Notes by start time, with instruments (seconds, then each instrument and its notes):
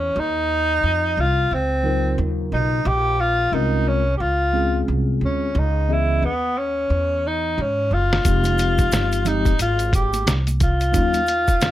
Already playing: upright bass E2, tenor saxophone C#4
0.16 upright bass D#2, tenor saxophone D#4
0.83 upright bass F2
1.17 upright bass C2, tenor saxophone F4
1.51 upright bass C#2, tenor saxophone C4
1.83 tine electric piano C#3 F#3 D#4 F4 A#4
2.18 upright bass D#2
2.52 upright bass B1, tenor saxophone D#4
2.85 upright bass A#1, tenor saxophone G4
3.20 tenor saxophone F4
3.51 upright bass C2, tine electric piano G#3 C4 C#4 F4 A#4, tenor saxophone D#4
3.88 tenor saxophone C#4
4.17 upright bass C#2, tenor saxophone F4 G4
4.53 tine electric piano G#3 C4 C#4 F4 G#4
4.88 upright bass C2
5.21 upright bass D2, tenor saxophone C#4
5.55 upright bass C#2, tenor saxophone D#4
5.88 tine electric piano E3 B3 C#4 G#4 D#5
5.93 tenor saxophone E4
6.22 upright bass D#2, tenor saxophone B3
6.58 tenor saxophone C#4
6.90 upright bass E2
7.27 tenor saxophone D#4
7.58 upright bass G#2, tenor saxophone C#4
7.91 upright bass F#1, tenor saxophone F4
8.13 snare
8.24 upright bass F1, tine electric piano F3 G#3 C4 D#4 G4, kick, closed hi-hat, shaker
8.44 closed hi-hat, high conga, shaker
8.58 closed hi-hat, shaker
8.78 kick, closed hi-hat, shaker
8.92 upright bass G1, snare, closed hi-hat, shaker
9.12 closed hi-hat, shaker
9.24 tine electric piano F3 G#3 C4 D#4 G4, tenor saxophone D#4, closed hi-hat, low conga, shaker
9.46 kick, closed hi-hat, shaker
9.59 upright bass G#1, tenor saxophone F4, closed hi-hat, high conga, shaker
9.79 closed hi-hat, shaker
9.93 tenor saxophone G4, kick, closed hi-hat, shaker
10.13 closed hi-hat, high conga, shaker
10.27 upright bass C2, snare, closed hi-hat, shaker
10.47 closed hi-hat, high conga, shaker
10.60 tenor saxophone F4, kick, closed hi-hat, low conga, shaker
10.80 closed hi-hat, shaker
10.92 upright bass D#2, tine electric piano F#3 A#3 C#4 D#4 F4, kick, closed hi-hat, shaker
11.14 closed hi-hat, high conga, shaker
11.27 closed hi-hat, shaker
11.48 kick, closed hi-hat, shaker
11.61 upright bass F2, snare, closed hi-hat, shaker